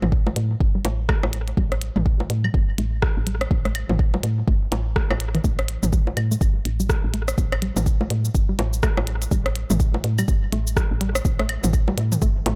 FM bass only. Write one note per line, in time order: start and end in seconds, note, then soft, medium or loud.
0.02 0.33 A1 medium
0.36 0.56 A2 medium
0.60 0.80 G1 loud
0.85 1.18 A1 medium
1.23 1.54 A1 medium
1.57 1.90 A1 loud
1.96 2.26 A1 loud
2.30 2.49 A2 medium
2.54 2.74 G1 loud
2.78 3.11 A1 medium
3.17 3.47 A1 medium
3.51 3.84 A1 loud
3.89 4.20 A1 loud
4.23 4.43 A2 medium
4.48 4.67 G1 loud
4.72 5.05 A1 medium
5.10 5.41 A1 medium
5.44 5.77 A1 loud
5.83 6.13 A1 loud
6.17 6.36 A2 medium
6.41 6.61 G1 loud
6.65 6.98 A1 medium
7.04 7.34 A1 medium
7.38 7.71 A1 loud
7.76 8.07 A1 loud
8.10 8.30 A2 medium
8.35 8.54 G1 loud
8.59 8.92 A1 medium
8.97 9.28 A1 medium
9.31 9.65 A1 loud
9.70 10.00 A1 loud
10.04 10.24 A2 medium
10.28 10.48 G1 loud
10.52 10.86 A1 medium
10.91 11.21 A1 medium
11.25 11.58 A1 loud
11.64 11.94 A1 loud
11.98 12.17 A2 medium
12.22 12.41 G1 loud
12.46 12.55 A1 loud